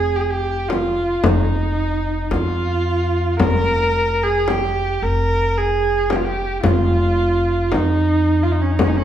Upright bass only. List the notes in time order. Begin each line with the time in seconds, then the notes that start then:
Already playing: F1
1.23 F1
2.31 F2
3.41 F1
5.02 F1
6.64 F1
7.72 F2
8.79 F1